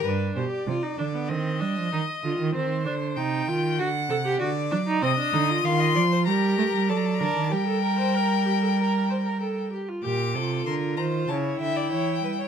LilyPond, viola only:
\new Staff \with { instrumentName = "Viola" } { \time 4/4 \key g \minor \tempo 4 = 96 d'8 g'8 f'16 ees'16 d'16 b16 c'8 d'8 ees'8 f'8 | c'8 d'8 ees'8 f'8 fis'8 a'16 g'16 fis'8 d'16 ees'16 | c'16 d'16 ees'16 f'4~ f'16 g'4 a'8 bes'8 | g'16 a'16 bes'16 c''16 bes'8 g'16 a'16 bes'8 c''16 bes'16 a'8 g'16 f'16 |
g'8 f'4. e'2 | }